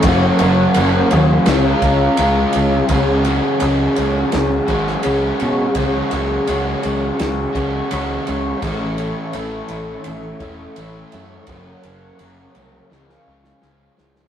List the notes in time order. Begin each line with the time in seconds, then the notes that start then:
Already playing: C#5 C#6
0.03 F#1 F#3 A#3 A#4 F#5, kick, ride
0.08 C#4 F#4
0.39 F#1 F#4, ride
0.43 A#3 C#4
0.74 F#1 F#3, ride
0.78 A#3 C#4 F#4
1.11 D#2 C#4 F#4, ride
1.15 A#3
1.45 C#2 C#3 G#4 F5 A#5, snare, ride
1.50 G#3 C#4 F4
1.82 C#2 G#3 C#4 F4, kick, ride
2.17 C#2 C#3 G#3 C#4, ride
2.21 F4
2.53 C#2 C#4 F4, ride
2.58 G#3
2.89 C#2 C#3 G#3 C#4 F#5 C#6, kick, ride
2.94 F#4
3.24 G#3 C#4 F#4, ride
3.60 C#2 C#3 G#3 C#4 F#4, ride
3.95 C#2 G#3 C#4 F#4, ride
4.32 C#2, snare, ride
4.68 G#1 G#3 C#4 F#4, kick, ride
4.87 snare
5.03 C#2 C#3 G#3 C#4, ride
5.07 F#4
5.39 B2 G#3 C#4 F#4, ride
5.75 C#2 C#3 G#3 C#4, kick, ride
5.79 F#4
6.11 C#2 G#3 C#4 F#4, ride
6.47 C#2 C#3 G#3 C#4 F#4, ride
6.82 C#2 G#3 C#4 F#4, ride
7.19 C#2, snare, ride
7.55 C#2 G#3 C#4 F#4, kick, ride
7.90 C#2 C#3 G#3 C#4 F#4, ride
8.27 C#2 G#3 C#4 F#4, ride
8.61 A1 A2 E3 A3 A4 C#5 E5, kick, ride
8.65 C#4 E4
8.97 A3 C#4 E4, ride
9.33 A1 E3 A3 C#4 E4, ride
9.68 A1 A3 C#4 E4, ride
10.04 A1, ride
10.40 E1 A3 C#4 E4, kick, ride
10.76 A1 E3 A3 C#4 E4, ride
11.12 F#2 A3 C#4 E4, ride
11.46 F#1 F#2 C#3 F#3 A#3 C#4 A#4 C#5 F#5, kick, ride
11.83 F#1 F#3 A#3 C#4, ride
12.19 F#1 C#3 F#3 A#3 C#4, ride
12.54 C2 F#3 A#3 C#4, ride
12.90 C#2 C#3 F3 G#3 C#4 F5 G#5 C#6, snare
13.09 snare
13.27 C#2 F3 G#3 C#4
13.44 snare
13.62 C#2 C#3 F3 G#3 C#4, snare
13.96 C#2 F3 G#3 C#4, snare
14.16 snare